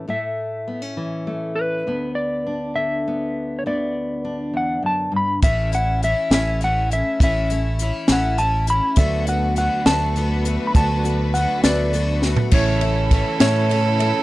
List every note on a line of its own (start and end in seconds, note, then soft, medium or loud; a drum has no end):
0.00 1.88 E4 medium
0.08 1.86 A2 medium
0.08 1.27 A3 soft
0.08 0.94 E5 medium
0.68 0.82 B3 soft
0.82 1.86 C#4 soft
0.97 1.83 E3 medium
1.27 1.87 A3 soft
1.56 2.11 B4 medium
1.87 3.65 D2 medium
1.87 3.06 B3 medium
2.15 2.77 D5 medium
2.46 3.61 D4 soft
2.76 5.42 D3 medium
2.76 3.60 E5 medium
3.08 3.62 B3 soft
3.59 3.65 C#5 medium
3.66 4.53 D2 medium
3.66 5.40 B3 soft
3.66 5.10 D5 medium
4.25 5.39 D4 soft
4.54 4.82 E2 medium
4.54 4.86 F#5 medium
4.83 5.11 F#2 soft
4.83 5.15 A5 medium
5.12 5.42 G2 medium
5.16 5.43 B5 medium
5.42 6.13 A1 medium
5.42 5.72 A2 medium
5.42 5.72 E3 medium
5.42 5.72 A3 medium
5.42 5.72 C#4 medium
5.42 5.71 E4 medium
5.42 5.73 E5 medium
5.42 kick loud
5.42 closed hi-hat medium
5.72 6.02 A3 soft
5.72 6.02 C#4 soft
5.72 6.02 E4 medium
5.72 6.04 F#5 medium
5.72 closed hi-hat medium
6.03 6.32 E3 medium
6.03 6.32 A3 medium
6.03 6.31 C#4 medium
6.03 6.31 E4 medium
6.03 6.33 E5 medium
6.03 closed hi-hat medium
6.30 7.01 A1 medium
6.30 6.62 A2 medium
6.30 6.61 E3 soft
6.30 6.62 A3 medium
6.30 6.61 C#4 medium
6.30 6.61 E4 medium
6.30 6.63 E5 medium
6.30 snare loud
6.30 closed hi-hat medium
6.61 6.91 E3 medium
6.61 6.91 A3 medium
6.61 6.91 C#4 medium
6.61 6.89 E4 medium
6.61 6.93 F#5 medium
6.61 closed hi-hat medium
6.91 7.20 A3 soft
6.91 7.21 C#4 soft
6.91 7.20 E4 soft
6.91 7.22 E5 medium
6.91 closed hi-hat medium
7.20 7.91 A1 medium
7.20 7.50 A2 medium
7.20 7.50 E3 medium
7.20 7.50 A3 medium
7.20 7.50 C#4 medium
7.20 7.49 E4 medium
7.20 8.13 E5 medium
7.20 kick loud
7.20 closed hi-hat medium
7.50 7.80 A3 soft
7.50 7.80 C#4 soft
7.50 7.79 E4 medium
7.50 closed hi-hat medium
7.79 8.09 E3 medium
7.79 8.10 A3 medium
7.79 8.09 C#4 medium
7.79 8.09 E4 medium
7.79 closed hi-hat medium
8.08 8.79 A1 medium
8.08 8.40 A2 medium
8.08 8.37 E3 medium
8.08 8.38 A3 medium
8.08 8.39 C#4 medium
8.08 8.39 E4 medium
8.08 snare loud
8.08 closed hi-hat medium
8.12 8.41 F#5 medium
8.38 8.68 E3 medium
8.38 8.68 A3 medium
8.38 8.68 C#4 medium
8.38 8.67 E4 medium
8.38 8.69 A5 medium
8.38 closed hi-hat medium
8.67 8.97 A3 soft
8.67 8.98 C#4 soft
8.67 8.98 E4 soft
8.67 8.97 B5 medium
8.67 closed hi-hat medium
8.96 10.71 D2 medium
8.96 9.68 D2 medium
8.96 10.71 D3 medium
8.96 9.27 D3 medium
8.96 9.66 F#3 medium
8.96 12.49 A3 medium
8.96 9.28 A3 medium
8.96 9.67 B3 medium
8.96 9.28 B3 medium
8.96 12.49 D4 medium
8.96 12.49 F#4 medium
8.96 9.27 F#4 medium
8.96 9.67 A4 medium
8.96 12.49 B4 medium
8.96 9.67 D5 medium
8.96 9.28 E5 medium
8.96 kick loud
8.96 closed hi-hat medium
9.27 9.57 A3 soft
9.27 9.58 B3 soft
9.27 9.57 F#4 medium
9.27 9.56 F#5 medium
9.27 closed hi-hat medium
9.56 9.86 D3 medium
9.56 9.86 A3 medium
9.56 9.86 B3 medium
9.56 9.85 F#4 medium
9.56 9.85 F#5 medium
9.56 closed hi-hat medium
9.86 10.57 D2 medium
9.86 10.15 D3 medium
9.86 10.55 F#3 medium
9.86 10.16 A3 medium
9.86 10.55 B3 medium
9.86 10.16 B3 medium
9.86 10.16 F#4 medium
9.86 10.55 A4 medium
9.86 10.55 D5 medium
9.86 10.67 A5 medium
9.86 snare loud
9.86 closed hi-hat medium
10.16 10.46 D3 medium
10.16 10.46 A3 medium
10.16 10.45 B3 medium
10.16 10.44 F#4 medium
10.16 closed hi-hat medium
10.45 10.74 A3 soft
10.45 10.75 B3 medium
10.45 10.75 F#4 soft
10.45 closed hi-hat medium
10.67 10.75 B5 medium
10.75 11.45 D2 medium
10.75 12.48 D2 medium
10.75 11.04 D3 medium
10.75 12.49 D3 medium
10.75 11.45 F#3 medium
10.75 11.05 A3 medium
10.75 11.45 B3 medium
10.75 11.04 B3 medium
10.75 11.02 F#4 medium
10.75 11.44 A4 medium
10.75 11.45 D5 medium
10.75 11.90 A5 medium
10.75 kick loud
10.75 closed hi-hat medium
11.04 11.34 A3 soft
11.04 11.34 B3 soft
11.04 11.34 F#4 soft
11.04 closed hi-hat medium
11.34 11.64 D3 medium
11.34 11.64 A3 medium
11.34 11.63 B3 medium
11.34 11.63 F#4 medium
11.34 11.61 F#5 loud
11.34 closed hi-hat medium
11.63 12.34 D2 medium
11.63 11.92 D3 medium
11.63 12.33 F#3 medium
11.63 11.93 A3 medium
11.63 12.33 B3 medium
11.63 11.93 B3 medium
11.63 11.94 F#4 medium
11.63 12.33 A4 medium
11.63 12.33 D5 medium
11.63 12.19 D5 medium
11.63 snare loud
11.63 closed hi-hat medium
11.93 12.23 D3 medium
11.93 12.23 A3 medium
11.93 12.23 B3 medium
11.93 12.22 F#4 medium
11.93 closed hi-hat medium
12.22 12.52 A3 medium
12.22 12.52 B3 medium
12.22 12.53 F#4 medium
12.22 snare medium
12.36 floor tom medium
12.51 14.23 A1 medium
12.51 13.23 A1 medium
12.51 14.23 A2 medium
12.51 12.81 A2 medium
12.51 14.23 C#3 medium
12.51 12.82 E3 medium
12.51 14.23 E3 medium
12.51 13.21 A3 medium
12.51 12.82 A3 medium
12.51 14.23 A3 medium
12.51 13.21 C#4 medium
12.51 12.81 C#4 medium
12.51 13.21 E4 medium
12.51 14.23 E4 medium
12.51 12.80 E4 medium
12.51 14.23 A4 loud
12.51 13.21 C#5 medium
12.51 13.38 C#5 medium
12.51 13.21 E5 medium
12.51 kick loud
12.51 crash loud
12.81 13.11 A3 soft
12.81 13.11 C#4 soft
12.81 13.11 E4 medium
12.81 ride medium
13.11 13.40 E3 medium
13.11 13.40 A3 medium
13.11 13.39 C#4 medium
13.11 13.39 E4 medium
13.11 kick medium
13.11 ride medium
13.39 14.11 A2 medium
13.39 13.71 A2 medium
13.39 13.68 E3 medium
13.39 14.09 A3 medium
13.39 13.69 A3 medium
13.39 14.10 C#4 medium
13.39 13.70 C#4 medium
13.39 14.09 E4 medium
13.39 13.70 E4 medium
13.39 14.09 C#5 medium
13.39 14.23 C#5 medium
13.39 14.10 E5 medium
13.39 snare loud
13.39 ride medium
13.69 14.00 E3 medium
13.69 14.00 A3 medium
13.69 13.99 C#4 medium
13.69 13.98 E4 medium
13.69 ride medium
13.99 14.23 A3 soft
13.99 14.23 C#4 soft
13.99 14.23 E4 medium
13.99 ride medium